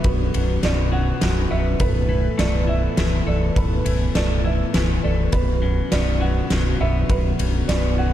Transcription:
Already playing: F#2 B2 D3 F#3 B3 F#4 B4
0.04 B0 B1 B4, kick, ride
0.34 B0 F#2, ride
0.63 B0 B2 D5, snare, ride
0.92 F#3 F#5
1.21 B0 F#2, snare, ride
1.51 B0 B2 E5
1.80 B0 A2 E3 A4 B4, kick, ride
2.09 E3
2.38 B0 A3 D5, snare, ride
2.67 E4 E5
2.97 B0 E3, snare, ride
3.27 B0 A3 D5
3.56 B0 A2 B4, kick, ride
3.85 B0 E3, ride
4.15 B0 A3 D5, snare, ride
4.44 E4 E5
4.74 B0 E3, snare, ride
5.04 B0 A3 D5
5.32 B0 B1 D3 F#4 B4, kick, ride
5.62 F#2
5.92 B0 B2 D5, snare, ride
6.21 F#3 F#5
6.50 B0 F#2, snare, ride
6.81 B0 B2 E5
7.09 B0 B1 B4, kick, ride
7.39 B0 F#2, ride
7.68 B0 B2 D5, snare, ride
7.98 F#3 F#5

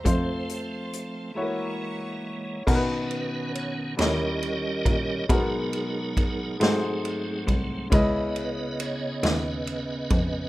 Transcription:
Already playing: C5 C6
0.03 F2 F3 A3 C4 F4 C5 F5 A5, kick, closed hi-hat
0.49 closed hi-hat
0.93 closed hi-hat
1.34 E3 G#3 A3 A#3 E4 F#4 C#5 E5 F#5 A#5 C#6
1.42 A#3
2.67 B2 D#3 B3 C#4 D#4 F#4 A#4, kick, crash
2.75 B4
3.11 B4, ride bell
3.55 C#5, ride bell
3.97 D#2 D#3 G3 C#4 D#4 E4 G4 A#4 C#5 D#5, snare, ride bell
4.43 ride bell
4.86 A#2, kick, ride bell
5.28 B2 F#3 G#3 B3 D#4 F#4 G#4 A#4, kick, ride bell
5.73 ride bell
6.17 kick, ride bell
6.60 G#2 F#3 A3 C4 F#4 G#4 C5, snare, ride bell
7.05 ride bell
7.48 C2, kick, ride bell
7.90 C#2 C#3 B3 C#4 E4 B4 D#5, kick, ride bell
7.94 D#5
8.36 B4, ride bell
8.80 C#5, ride bell
9.23 D#2 C#4 B4, snare, ride bell
9.67 ride bell
10.10 F2, kick, ride bell

